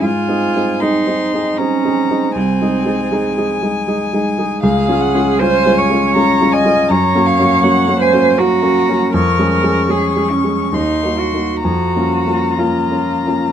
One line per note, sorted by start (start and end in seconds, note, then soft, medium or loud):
0.02 0.28 G#2 medium
0.02 0.83 F4 medium
0.02 0.81 G#5 medium
0.28 0.52 C4 soft
0.28 0.52 D#4 soft
0.28 0.52 G#4 soft
0.56 0.79 C4 soft
0.56 0.79 D#4 soft
0.56 0.79 G#4 medium
0.80 1.04 C4 medium
0.80 1.59 D#4 medium
0.80 1.05 D#4 medium
0.80 1.05 G#4 medium
0.80 1.59 C6 medium
1.07 1.30 C4 soft
1.07 1.30 D#4 medium
1.07 1.30 G#4 medium
1.34 1.56 C4 soft
1.34 1.57 D#4 soft
1.34 1.57 G#4 medium
1.58 1.82 C4 soft
1.58 2.34 C#4 medium
1.58 1.82 D#4 soft
1.58 1.82 G#4 medium
1.58 2.34 A#5 medium
1.85 2.07 C4 soft
1.85 2.07 D#4 medium
1.85 2.07 G#4 medium
2.10 2.33 C4 medium
2.10 2.33 D#4 medium
2.10 2.33 G#4 medium
2.35 2.60 C2 medium
2.35 3.47 C4 medium
2.35 4.59 G#5 medium
2.61 2.84 G#3 medium
2.61 2.84 D#4 medium
2.61 2.84 G#4 medium
2.85 3.08 G#3 medium
2.85 3.09 D#4 medium
2.85 3.09 G#4 medium
3.11 3.34 G#3 medium
3.11 3.34 D#4 medium
3.11 3.35 G#4 medium
3.37 3.60 G#3 medium
3.37 3.60 D#4 medium
3.37 3.60 G#4 medium
3.63 3.85 G#3 medium
3.63 3.85 D#4 soft
3.63 3.85 G#4 medium
3.88 4.10 G#3 medium
3.88 4.10 D#4 medium
3.88 4.10 G#4 medium
4.13 4.35 G#3 soft
4.13 4.36 D#4 medium
4.13 4.36 G#4 medium
4.38 4.61 G#3 medium
4.38 4.61 D#4 medium
4.38 4.61 G#4 medium
4.63 4.88 C#2 medium
4.63 5.41 G#4 loud
4.63 5.02 F5 medium
4.88 5.11 G#3 medium
4.88 5.11 C#4 medium
4.88 5.11 F4 medium
5.01 5.39 F#5 medium
5.14 5.37 G#3 medium
5.14 5.37 C#4 medium
5.14 5.37 F4 medium
5.39 5.63 G#3 medium
5.39 5.63 C#4 medium
5.39 5.64 F4 medium
5.39 5.80 C5 loud
5.39 6.14 G#5 medium
5.65 5.88 G#3 medium
5.65 5.88 C#4 medium
5.65 5.88 F4 medium
5.78 6.55 C#5 loud
5.90 6.12 G#3 medium
5.90 6.13 C#4 medium
5.90 6.13 F4 medium
6.15 6.38 G#3 medium
6.15 6.38 C#4 medium
6.15 6.38 F4 medium
6.15 6.54 A#5 medium
6.41 6.62 G#3 medium
6.41 6.63 C#4 medium
6.41 6.63 F4 medium
6.52 6.92 D#5 loud
6.52 6.90 G#5 medium
6.65 6.87 G#3 medium
6.65 6.87 C#4 medium
6.65 6.87 F4 medium
6.89 7.14 F#2 medium
6.89 8.00 C#5 loud
6.89 7.27 A#5 medium
7.15 7.37 A#3 medium
7.15 7.37 C#4 medium
7.15 7.37 F#4 medium
7.26 7.64 F5 medium
7.39 7.61 A#3 medium
7.39 7.61 C#4 medium
7.39 7.61 F#4 medium
7.63 7.86 A#3 medium
7.63 7.86 C#4 medium
7.63 7.86 F#4 medium
7.63 8.03 F#5 medium
7.87 8.10 A#3 medium
7.87 8.11 C#4 medium
7.87 8.11 F#4 medium
8.00 8.40 C5 loud
8.00 8.40 G#5 medium
8.13 8.35 A#3 medium
8.13 8.36 C#4 medium
8.13 8.36 F#4 medium
8.37 8.60 A#3 soft
8.37 8.61 C#4 medium
8.37 9.13 F#4 loud
8.37 8.61 F#4 medium
8.37 9.15 A#5 medium
8.62 8.85 A#3 medium
8.62 8.86 C#4 soft
8.62 8.86 F#4 medium
8.89 9.12 A#3 soft
8.89 9.12 C#4 medium
8.89 9.12 F#4 medium
9.14 9.39 F2 medium
9.14 9.91 A#4 loud
9.14 9.52 C#6 medium
9.38 9.61 G#3 medium
9.38 9.62 C#4 soft
9.38 9.62 G#4 medium
9.53 10.75 C#6 medium
9.63 9.87 G#3 medium
9.63 9.87 C#4 medium
9.63 9.87 G#4 medium
9.89 10.13 G#3 medium
9.89 10.14 C#4 medium
9.89 10.14 G#4 medium
9.89 10.33 G#4 medium
10.16 10.42 G#3 soft
10.16 10.42 C#4 soft
10.16 10.42 G#4 medium
10.31 10.74 C#4 medium
10.44 10.71 G#3 soft
10.44 10.71 C#4 soft
10.44 10.71 G#4 soft
10.72 11.02 D#2 medium
10.72 11.21 D#4 medium
10.72 11.62 C6 medium
11.03 11.31 A#3 soft
11.03 11.31 D#4 soft
11.03 11.31 F#4 soft
11.19 11.63 F#4 medium
11.33 11.62 A#3 soft
11.33 11.62 D#4 soft
11.33 11.62 F#4 soft
11.63 11.95 F2 medium
11.63 12.61 F#4 medium
11.63 13.52 A#5 medium
11.96 12.24 A#3 soft
11.96 12.25 C#4 soft
11.96 12.25 F4 soft
12.27 12.56 A#3 soft
12.27 12.56 C#4 soft
12.27 12.56 F4 soft
12.59 12.88 A#3 soft
12.59 12.88 C#4 soft
12.59 12.88 F4 soft
12.59 13.52 F4 medium
12.91 13.22 A#3 soft
12.91 13.22 C#4 soft
12.91 13.22 F4 soft
13.27 13.52 A#3 soft
13.27 13.52 C#4 soft
13.27 13.52 F4 soft